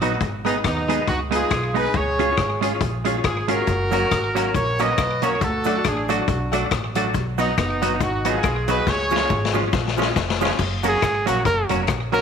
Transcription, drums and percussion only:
0.02 closed hi-hat
0.20 kick, closed hi-hat
0.46 closed hi-hat
0.64 kick, cross-stick, closed hi-hat
0.89 closed hi-hat
1.07 kick, closed hi-hat
1.32 closed hi-hat
1.50 kick, cross-stick, closed hi-hat
1.75 open hi-hat
1.94 kick, closed hi-hat
2.19 closed hi-hat
2.37 kick, cross-stick, closed hi-hat
2.62 closed hi-hat
2.81 kick, closed hi-hat
3.05 closed hi-hat
3.24 kick, cross-stick, closed hi-hat
3.48 closed hi-hat
3.67 kick, closed hi-hat, cabasa
3.92 closed hi-hat, cabasa
4.11 kick, cross-stick, closed hi-hat, cabasa
4.36 closed hi-hat, cabasa
4.54 kick, closed hi-hat, cabasa
4.79 closed hi-hat, cabasa
4.97 kick, cross-stick, closed hi-hat, cabasa
5.22 closed hi-hat, cabasa
5.41 kick, closed hi-hat, cabasa
5.64 closed hi-hat, cabasa
5.84 kick, cross-stick, closed hi-hat, cabasa
6.09 closed hi-hat, cabasa
6.28 kick, closed hi-hat, cabasa
6.53 closed hi-hat, cabasa
6.71 kick, cross-stick, closed hi-hat, cabasa
6.95 closed hi-hat, cabasa
7.14 kick, closed hi-hat, cabasa
7.38 closed hi-hat, cabasa
7.58 kick, cross-stick, closed hi-hat, cabasa
7.82 closed hi-hat, cabasa
8.00 kick, closed hi-hat, cabasa
8.25 closed hi-hat, cabasa
8.43 kick, cross-stick, closed hi-hat, cabasa
8.68 closed hi-hat, cabasa
8.87 kick, snare, cabasa
9.10 cabasa
9.16 snare
9.30 kick, cabasa
9.45 snare
9.54 cabasa
9.73 kick, snare, cabasa
9.88 snare
9.98 cabasa
10.02 snare
10.16 kick, snare, cabasa
10.30 snare
10.41 snare, cabasa
10.59 kick, crash, cabasa
10.84 closed hi-hat, cabasa
11.02 kick, cross-stick, closed hi-hat, cabasa
11.27 closed hi-hat, cabasa
11.45 kick, closed hi-hat, cabasa
11.69 closed hi-hat, cabasa
11.87 kick, cross-stick, closed hi-hat, cabasa
12.12 open hi-hat, cabasa

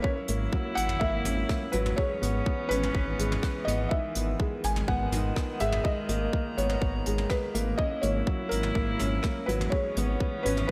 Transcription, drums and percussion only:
0.04 kick
0.28 closed hi-hat
0.53 kick
0.77 closed hi-hat
0.89 mid tom
1.01 kick
1.25 closed hi-hat, mid tom
1.49 kick, cross-stick
1.73 closed hi-hat
1.86 mid tom
1.98 kick
2.23 closed hi-hat
2.46 kick
2.71 closed hi-hat
2.83 mid tom
2.95 kick
3.19 closed hi-hat
3.32 mid tom
3.43 kick, cross-stick
3.68 closed hi-hat
3.91 kick
4.15 closed hi-hat
4.40 kick
4.64 closed hi-hat
4.76 mid tom
4.88 kick
5.12 closed hi-hat, mid tom
5.36 kick, cross-stick
5.60 closed hi-hat
5.72 mid tom
5.85 kick
6.09 closed hi-hat
6.33 kick
6.58 closed hi-hat
6.69 mid tom
6.82 kick
7.06 closed hi-hat
7.18 mid tom
7.30 kick, cross-stick
7.55 closed hi-hat
7.79 kick
8.03 closed hi-hat
8.27 kick
8.51 closed hi-hat
8.63 mid tom
8.75 kick
8.99 closed hi-hat, mid tom
9.23 kick, cross-stick
9.49 closed hi-hat
9.61 mid tom
9.72 kick
9.97 closed hi-hat
10.20 kick
10.46 closed hi-hat
10.57 mid tom

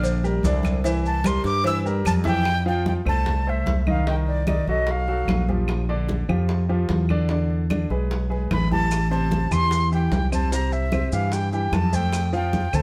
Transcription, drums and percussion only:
0.03 cowbell, high conga, maracas
0.23 high conga, maracas
0.43 cowbell, high conga, maracas
0.63 cowbell, high conga, claves, maracas
0.84 cowbell, maracas
1.04 high conga, maracas
1.24 cowbell, high conga, claves, maracas
1.44 cowbell, high conga, maracas
1.64 cowbell, high conga, maracas
1.85 high conga, maracas
2.05 cowbell, high conga, claves, maracas
2.24 cowbell, high bongo, high conga, maracas
2.45 high bongo, claves
2.66 high conga
2.86 high bongo, high conga
3.06 high conga, low conga, claves
3.26 high bongo, high conga, low conga
3.46 high conga
3.66 high bongo, low bongo, high conga
3.87 high conga, claves
4.07 high bongo, high conga
4.27 high conga
4.47 high bongo, high conga, claves
4.67 high bongo, high conga
4.87 high bongo, high conga
5.08 high bongo, high conga
5.28 high bongo, low bongo, high conga, claves
5.49 high bongo, high conga
5.68 high bongo, high conga, claves
5.89 high conga
6.09 high bongo, high conga
6.29 high conga, low conga, claves
6.49 high bongo, high conga
6.70 high conga
6.89 high bongo, low bongo, high conga
7.09 high conga, claves
7.29 high bongo, high conga
7.50 high conga
7.70 high bongo, high conga, claves
7.90 high bongo, high conga
8.11 high bongo, high conga
8.31 high bongo, high conga
8.51 high bongo, low bongo, high conga, claves
8.72 high bongo, high conga
8.91 high bongo, high conga, claves, maracas
9.12 high conga, maracas
9.31 high bongo, high conga, maracas
9.51 high conga, low conga, claves, maracas
9.71 high bongo, high conga, maracas
9.92 high conga, maracas
10.12 high bongo, low bongo, high conga, maracas
10.32 high conga, claves, maracas
10.52 high bongo, maracas
10.72 high conga, maracas
10.92 high bongo, high conga, claves, maracas
11.12 high bongo, high conga, maracas
11.32 high bongo, high conga, maracas
11.53 high bongo, high conga, maracas
11.73 high bongo, low bongo, high conga, claves, maracas
11.93 high bongo, high conga, maracas
12.13 high bongo, claves, maracas
12.33 high conga, maracas
12.53 high bongo, high conga, maracas
12.73 high conga, low conga, claves, maracas

